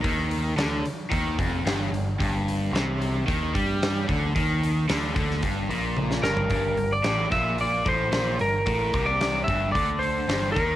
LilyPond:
<<
  \new Staff \with { instrumentName = "Lead electric guitar" } { \time 4/4 \key g \minor \tempo 4 = 111 r1 | r1 | r2. r8 bes'8~ | bes'8. d''8. e''8 d''8 c''4 bes'8~ |
bes'8. d''8. e''8 d''8 c''4 bes'8 | }
  \new Staff \with { instrumentName = "Overdriven electric guitar" } { \clef bass \time 4/4 \key g \minor ees4 d8 r8 ees8 f,8 g,8 g,8 | g,4 c4 ees8 g4 d8 | ees4 d8 d8 g,8 bes,4 g,8 | g,8 g,8 a,8 bes,4 a,8 bes,8 g,8 |
a,8 c4 g,8 d4 g,8 ees8 | }
  \new Staff \with { instrumentName = "Picked electric bass" } { \clef bass \time 4/4 \key g \minor ees,4 d,8 r8 ees,8 f,,8 g,,8 g,,8 | g,,4 c,4 ees,8 g,4 d,8 | ees,4 d,8 d,8 g,,8 bes,,4 g,,8 | g,,8 g,,8 a,,8 bes,,4 a,,8 bes,,8 g,,8 |
a,,8 c,4 g,,8 d,4 g,,8 ees,8 | }
  \new DrumStaff \with { instrumentName = "Drums" } \drummode { \time 4/4 <hho bd>8 hho8 <hho sn>8 hho8 <hho bd>8 <hho bd>8 <hho sn>8 hho8 | <hho bd>8 hho8 <hho sn>8 hho8 <hho bd>8 <hho bd>8 <hho sn>8 <hho bd>8 | <hho bd>8 hho8 <hho sn>8 <hho bd>16 sn16 <hho bd>8 hho8 tommh16 sn16 sn16 tomfh16 | <hho bd>8 hho8 <hho sn>8 <hho bd sn>8 hho8 <hho bd>8 <hho sn>8 hho8 |
<hho bd>8 <hho bd>8 <hho sn>8 <hho bd>8 <hho bd>8 hho8 <hho sn>8 <hho bd>8 | }
>>